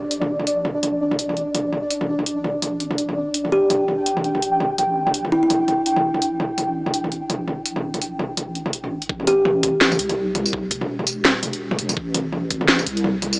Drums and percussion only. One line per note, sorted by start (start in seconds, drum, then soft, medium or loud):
0.11 closed hi-hat medium
0.22 mid tom medium
0.39 mid tom medium
0.47 closed hi-hat medium
0.65 mid tom medium
0.83 closed hi-hat medium
0.83 mid tom soft
1.11 mid tom medium
1.19 closed hi-hat medium
1.29 mid tom soft
1.37 closed hi-hat soft
1.55 closed hi-hat medium
1.55 mid tom medium
1.73 mid tom soft
1.91 closed hi-hat medium
2.01 mid tom medium
2.19 mid tom soft
2.26 closed hi-hat medium
2.44 mid tom medium
2.62 closed hi-hat medium
2.62 mid tom soft
2.80 closed hi-hat soft
2.91 mid tom medium
2.98 closed hi-hat medium
3.09 mid tom soft
3.34 closed hi-hat medium
3.45 mid tom soft
3.70 closed hi-hat medium
3.70 mid tom medium
3.88 mid tom soft
4.06 closed hi-hat medium
4.17 mid tom medium
4.24 closed hi-hat soft
4.35 mid tom soft
4.42 closed hi-hat medium
4.60 mid tom medium
4.78 closed hi-hat medium
4.78 mid tom soft
5.07 mid tom medium
5.14 closed hi-hat medium
5.25 mid tom medium
5.50 closed hi-hat medium
5.50 mid tom medium
5.68 closed hi-hat soft
5.68 mid tom medium
5.86 closed hi-hat medium
5.96 mid tom medium
6.14 mid tom medium
6.22 closed hi-hat medium
6.40 mid tom medium
6.58 closed hi-hat medium
6.58 mid tom medium
6.86 mid tom medium
6.94 closed hi-hat medium
7.04 mid tom medium
7.12 closed hi-hat soft
7.30 closed hi-hat medium
7.30 mid tom medium
7.48 mid tom medium
7.66 closed hi-hat medium
7.76 mid tom medium
7.94 closed hi-hat soft
7.94 mid tom medium
8.02 closed hi-hat medium
8.19 mid tom medium
8.37 closed hi-hat medium
8.37 mid tom medium
8.55 closed hi-hat soft
8.66 mid tom medium
8.73 closed hi-hat medium
8.84 mid tom medium
9.02 closed hi-hat soft
9.09 kick loud
9.20 mid tom medium
9.27 closed hi-hat medium
9.45 mid tom medium
9.63 kick medium
9.63 closed hi-hat medium
9.63 mid tom medium
9.81 snare loud
9.92 mid tom medium
9.92 tambourine soft
9.99 closed hi-hat medium
10.10 closed hi-hat soft
10.10 mid tom medium
10.35 closed hi-hat medium
10.35 mid tom medium
10.46 tambourine medium
10.53 kick loud
10.53 mid tom medium
10.71 kick medium
10.71 closed hi-hat medium
10.81 mid tom medium
10.99 mid tom medium
11.07 closed hi-hat medium
11.07 tambourine medium
11.25 snare loud
11.25 mid tom medium
11.43 closed hi-hat medium
11.43 mid tom medium
11.53 closed hi-hat soft
11.71 mid tom medium
11.79 closed hi-hat medium
11.89 mid tom medium
11.89 tambourine medium
11.97 kick loud
12.14 closed hi-hat medium
12.14 mid tom medium
12.32 mid tom medium
12.50 kick medium
12.50 closed hi-hat medium
12.61 mid tom medium
12.68 snare loud
12.79 mid tom medium
12.79 tambourine soft
12.86 closed hi-hat medium
12.97 closed hi-hat soft
13.04 mid tom medium
13.22 closed hi-hat medium
13.22 mid tom medium
13.33 tambourine medium